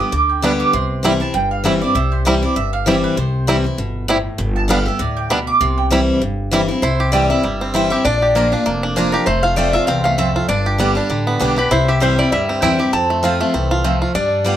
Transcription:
Already playing: G4
0.00 B3 D#6
0.12 D2 D3 D6
0.29 G5
0.42 D3 G3 B3 D4 G4 B5
0.60 D6
0.73 C2 C3 C6
1.03 E3 G3 C4 E4
1.20 C4 E4 A5
1.34 G1 G2 G5
1.51 F5
1.64 E3 G3 C4 E4 E5
1.82 C4 E4 D5
1.95 C2 C3 E5
2.12 C5
2.25 E3 G3 C4 E4 B4
2.42 C4 E4 D5
2.56 G1 G2 E5
2.73 F5
2.86 E3 G3 C4 E4 D5
3.04 B4
3.17 C2 C3 C5
3.47 E3 G3 C4 E4
3.64 C4 E4
3.78 G1 B2
4.08 A2 G3 C4 E4
4.38 G1 G2
4.56 A5
4.68 D3 G3 B3 D4 G4 F5
4.86 B3 G4 E5
4.99 D2 A2 D5
5.17 G5
5.30 B2 G3 B3 D4 B5
5.47 D6
5.61 C2 C3 C6
5.78 G5
5.90 E3 G3 C4 E4
6.21 G1 G2
6.51 E3 G3 C4 E4
6.68 C4 E4
6.82 C2 C3 E4 C5
7.00 G4
7.12 E3 G3 C4 E4 C5 D5 G5
7.30 C4 E4 E5
7.43 G1 G2 G3
7.61 C4
7.74 E3 G3 C4 E4 C5 G5
7.90 C4 E4 G4 E5
8.05 A#1 A#2 D4 D5
8.22 G4
8.35 F3 A#3 D4 F4 D5 A#5
8.52 D4 F4
8.66 F1 F2 A#3
8.83 D4
8.96 F3 A#3 D4 F4 D5 A#5
9.12 D4 F4 G4 A#4
9.26 F1 F2 A3 C5
9.43 F4 F5
9.56 F3 A3 C4 F4 C5 D5 A5
9.73 C4 F4 E5
9.87 C2 E2 C4 F5
10.04 A3 F5
10.18 F2 C4 F4 C5 E5 A5
10.36 F4
10.48 G1 G2 D4 D5
10.66 G4
10.78 D3 G3 B3 G4 D5 G5
10.95 B3 D4 G4
11.10 A1 D3 G3
11.27 B3
11.39 B1 D3 G3 B3 D4 G4 D5 G5
11.56 B3 G4 B4
11.71 C2 C3 E4 C5
11.88 G4 E5
12.00 E3 G3 C4 E4 C5 G5
12.18 C4 E4 D5
12.32 D2 G2 G3 E5
12.49 C4
12.62 E2 E3 G3 C4 E4 C5 G5
12.79 C4 E4 G4
12.93 F2 C4 A5
13.10 A3
13.23 F3 A3 C4 F4 C5 A5
13.40 A3 C4 F4
13.54 C2 E3 C4
13.71 F4
13.84 F3 A3 C4 F4 C5 A5
14.02 F4
14.15 G2 G3 D4 D5
14.44 G3 B3 F4 B4 G5

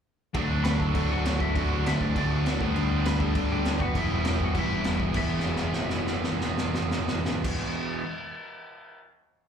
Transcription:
0.34 D2 D3 F#3 A3 D4, kick, crash
0.50 D2
0.64 D2 B4 B5, snare, crash
0.79 D2 A4 A5, kick
0.94 D2 D3 F#3 A3 D4, kick, crash
1.10 D2 F#4 F#5
1.25 D2, snare, crash
1.40 D2 E4 E5, kick
1.55 D2 D3 F#3 A3 D4 F#4 F#5, kick, crash
1.71 D2
1.86 D2 E4 E5, snare, crash
2.00 D2 D4 D5, kick
2.16 D2 D3 F#3 A3 D4 D5, kick, crash
2.31 D2
2.45 D2, snare, crash
2.59 D2 G2 D3 G3 B3 D4, kick
2.76 D2, crash
2.91 D2
3.05 D2 B4 B5, snare, crash
3.19 D2 G2 D3 G3 B3 D4 A4 A5, kick
3.35 D2, kick, crash
3.50 D2 G4 G5
3.65 D2, snare, crash
3.80 F#2 F#4 F#5, kick
3.93 E1 E2 B2 E3 G3 B3 E4, kick, crash
3.97 E5
4.09 E1
4.25 E1 G4, snare, crash
4.29 G5
4.39 E1 F#4, kick
4.44 F#5
4.54 E1 E2 B2 E3 G3 B3 E4, kick, crash
4.58 E4 E5
4.69 E1
4.84 E1, snare, crash
4.99 E1, kick
5.13 E1 E2 B2 E3 G#3 B3 E5, kick, crash
5.18 E3 E4
5.30 floor tom
5.40 snare
5.47 floor tom
5.56 snare
5.64 floor tom
5.73 snare
5.80 floor tom
5.90 snare
5.97 floor tom
6.07 snare
6.14 floor tom
6.24 snare
6.31 floor tom
6.41 snare
6.48 floor tom
6.58 snare
6.65 floor tom
6.74 snare
6.82 floor tom
6.91 snare
6.99 floor tom
7.08 snare
7.15 floor tom
7.25 snare
7.33 floor tom
7.44 kick, crash

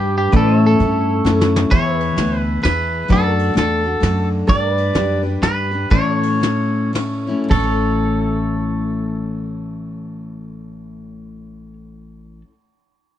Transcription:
Already playing: G2 G3 D4 G4 B4 D5
0.18 G4
0.32 A2 E3 A3 C#4 E4 A4 B4 D5, kick, closed hi-hat
0.58 C#5 E5
0.67 A4
0.79 G2 A3 C#4 E4 A4, closed hi-hat
1.25 F#2 A3 C#4 E4 A4, snare
1.41 snare
1.56 snare
1.70 E2 E3 B3 E4 G#4 B4 C#5 E5, kick, ride
1.97 B4, ride
2.17 D2 B3 E4 G#4 B4, snare, ride
2.39 B4
2.62 E2 B3 E4 G#4 B4, snare, ride
3.08 F#2 F#3 A3 D4 F#4 A4 B4 D5, kick, ride
3.35 A4, ride
3.54 E2 A3 D4 F#4 A4, snare, ride
3.84 D4 F#4 A4
4.00 F#2 A3 D4 F#4 A4, snare, ride
4.47 G2 G3 D4 G4 A4 B4 D5, kick, ride
4.63 A#4
4.74 B4, ride
4.94 F#2 G3 D4 G4 B4, snare, ride
5.23 D4 G4 B4
5.42 G2 G3 D4 G4 B4, snare, ride
5.71 D4 G4 B4
5.90 A2 E3 A3 C#4 E4 A4 C#5 D5, kick, ride
6.15 C#5
6.23 ride
6.40 A3 C#4 E4 C#5, snare, ride
6.93 A3 C#4 E4 C#5, snare, ride
7.27 A3 C#4 E4 C#5
7.44 A2
7.49 A1 E3 A4 C#5, kick, floor tom, crash
7.53 A3 C#4
7.60 E4 A4

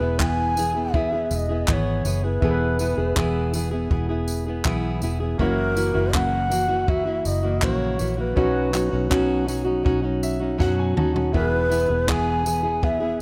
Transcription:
Already playing: E4 G#4 B4
0.01 E1 B3 E4 G#4
0.19 E3 B3 E4 G#4 G#5, kick, clap
0.57 E3 B3 E4 G#4, tambourine
0.75 B3 E4 G#4
0.94 E3 B3 E4 G#4 E5, kick
1.12 B3 E4 G#4
1.31 E1 E5, tambourine
1.36 D#5
1.49 B3 E4 G#4
1.68 G#1 E3 B3 E4 G#4 D#5, kick, clap
1.72 C#5
2.05 F#1 E3 B3 E4 G#4, tambourine
2.24 B3 E4 G#4 B4
2.40 E1 E3 B3 E4 G#4 A4, kick
2.51 B4
2.79 E3 B3 E4 G#4, tambourine
2.97 E1 B3 E4 G#4
3.16 E1 E3 B3 E4 G#4, kick, clap
3.53 E3 B3 E4 G#4, tambourine
3.71 B3 E4 G#4
3.90 E1 E3 B3 E4 G#4, kick
4.09 B3 E4 G#4
4.28 tambourine
4.46 B3 E4 G#4
4.65 B1 E3 B3 E4 G#4, kick, clap
5.02 E1 E3 B3 E4 G#4, tambourine
5.20 B3 E4 G#4
5.38 F#1 F#2 C#3 E3 A#3 C#4 E4 F#4 A#4 C#5, kick
5.75 E3 A#3 E4 F#4, tambourine
5.94 F#1 E3 A#3 E4 F#4
6.13 F#2 C#3 E3 A#3 E4 F#4 F#5, kick, clap
6.50 E3 A#3 E4 F#4, tambourine
6.68 E3 A#3 E4 F#4
6.87 E3 A#3 E4 F#4 E5, kick
7.06 E3 A#3 E4 F#4
7.25 F#1 D#5, tambourine
7.43 E3 A#3 E4 F#4
7.61 A#1 F#2 C#3 E3 A#3 E4 F#4 C#5, kick, clap
7.98 A#1 E3 A#3 E4 F#4, tambourine
8.17 E3 A#3 E4 F#4 B4
8.35 B1 B2 F#3 B3 C#4 D#4 F#4 D#5, kick
8.39 C#5
8.72 F#3 C#4 D#4 F#4, clap, tambourine
8.91 B1 C#4 D#4 F#4
9.10 B1 B2 F#3 C#4 D#4 F#4, kick, clap
9.46 F#3 C#4 D#4 F#4, tambourine
9.65 C#4 D#4 F#4
9.83 B1 F#3 C#4 D#4 F#4, kick
10.02 C#4 D#4 F#4
10.23 E5, tambourine
10.40 C#4 D#4 F#4
10.58 F#2 B2 F#3 C#4 D#4 F#4 F#5, kick, snare
10.79 G#5
10.96 D#2 F#3 C#4 D#4 F#4 A5, mid tom
11.14 C#4 D#4 F#4, floor tom
11.32 E1 E3 B3 E4 F#4 G#4 B4, kick
11.36 A#4
11.40 G#4
11.49 B4
11.70 E3 B3 E4 G#4, tambourine
11.89 E1 B3 E4 G#4
12.07 E3 B3 E4 G#4 G#5, kick, clap
12.45 E3 B3 E4 G#4, tambourine
12.63 B3 E4 G#4
12.82 E3 B3 E4 G#4 E5, kick
13.00 B3 E4 G#4

